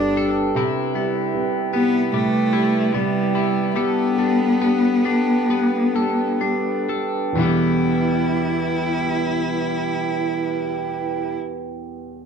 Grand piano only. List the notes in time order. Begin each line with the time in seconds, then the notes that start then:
Already playing: G3
0.17 G3
0.55 C3
0.95 G3
1.34 C3
1.74 G3
2.13 C3
2.53 G3
2.93 C3
3.34 G3
3.76 G3
4.18 G3
4.60 G3
5.04 G3
5.49 G3
5.95 G3
6.41 G3
6.89 G3
7.32 E2 B2
7.38 E3 G3
7.44 B3